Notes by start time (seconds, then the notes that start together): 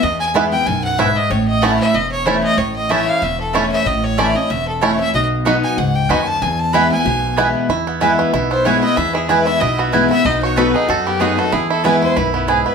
0.03 E2 D#5
0.20 G#5
0.34 E3 G#3 B3 E4 B4 G#5
0.52 B3 E4 G5
0.66 B1 F#2 G#5
0.84 F#5
0.98 G#2 B3 E4 B4 E5 G#5
1.17 D#5
1.30 A1 A2 C#5
1.48 D#5
1.62 E3 A3 C#4 E4 C#5 F#5 A5
1.80 E5
1.94 E1 E2 D#5
2.12 C#5
2.25 E3 A3 C#4 E4 C5 C#5 A5
2.43 D#5
2.57 A1 A2 C#5
2.76 D#5
2.89 E3 A3 C#4 E4 C#5 E5 A5
3.09 F5
3.22 E1 E2 E5
3.41 A4
3.53 E3 A3 C#4 E4 C#5 A5
3.72 E5
3.85 A1 A2 D#5
4.04 C#5
4.17 E3 A3 C#4 E4 C#5 D5 A5
4.35 C#4 E4 D#5
4.50 E1 E2 E5
4.68 A4
4.81 E3 A3 C#4 E4 C#5 A5
4.99 C#4 E4 E5
5.13 B1 B2 D#5
5.45 F#3 B3 D#4 F#4 D#5 B5
5.64 G#5
5.77 C#2 G#2 F#5
5.95 G5
6.09 D#2 F#2 B3 D#4 F#4 D#5 G#5 B5
6.27 A5
6.42 E2 G#5
6.59 A5
6.73 E3 G#3 B3 E4 B4 G#5 B5
6.91 B3 E4 G#5
7.05 B1 B2
7.36 E3 G#3 B3 E4 B4 G#5
7.69 E2 E4
7.87 B3
8.00 E3 G#3 B3 E4 B4 G#5
8.19 B3
8.33 B1 B2 E4
8.51 B3 C5
8.65 E3 G#3 B3 E4 B4 C#5 G#5
8.83 B3 E4 D#5
8.96 E2 E4 E5
9.15 E4 G#4
9.29 E3 G#3 B3 E4 B4 G#5
9.46 E4 E5
9.61 B1 B2 E4 D#5
9.78 B3 F#4
9.92 E3 G#3 B3 E4 B4 G#5
10.10 B3 E4 E5
10.25 B1 B2 D#4 D#5
10.43 F#4 C#5
10.56 F#3 B3 D#4 F#4 A4 B4 D#5 B5
10.74 D#4 F#4 G#4
10.88 F#2 F#4 A4
11.06 B3 G4
11.20 F#3 B3 D#4 F#4 G#4 D#5 B5
11.37 B3 D#4 F#4 A4
11.52 E2 E4 G#4
11.70 E4 A4
11.84 E3 G#3 B3 E4 B4 G#5
12.02 E4 C5
12.16 B1 F#2 E4 B4
12.34 B3 E4
12.47 G#2 B3 E4 G#4 B4 G#5
12.66 B3 B4